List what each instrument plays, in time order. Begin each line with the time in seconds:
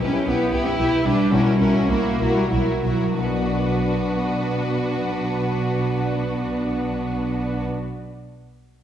Already playing: harp B2 E4
0.02 double bass section B1, harp B3, cello section C#4, viola section E4, violin section G4 B4
0.27 double bass section B1, cello section B3, viola section E4, harp G4, violin section G4 B4
0.52 double bass section B1, viola section E4, violin section G4 B4, harp B4
0.66 cello section E4
0.77 double bass section B1, viola section E4, harp E4, violin section G4 B4
1.04 double bass section B1, harp G3, cello section D4, viola section E4, violin section G4 B4
1.31 double bass section B1, harp B2, cello section C#4, viola section E4, violin section F#4 A#4
1.59 double bass section B1, harp A#3, cello section C#4, viola section E4, violin section F#4 A#4
1.88 double bass section B1, cello section A#3, viola section E4, harp F#4, violin section F#4 A#4
2.19 double bass section B1, viola section E4, violin section F#4 A#4, harp A#4
2.35 cello section G3
2.50 double bass section B1, cello section F#3, viola section E4, harp E4, violin section F#4 A#4
2.84 double bass section B1, harp F#3, viola section E4, violin section F#4 A#4
3.17 double bass section B1, harp B2, cello section B3, viola section D4, violin section F#4 B4
3.24 harp B3
3.31 harp D4
3.38 harp F#4
3.45 harp D5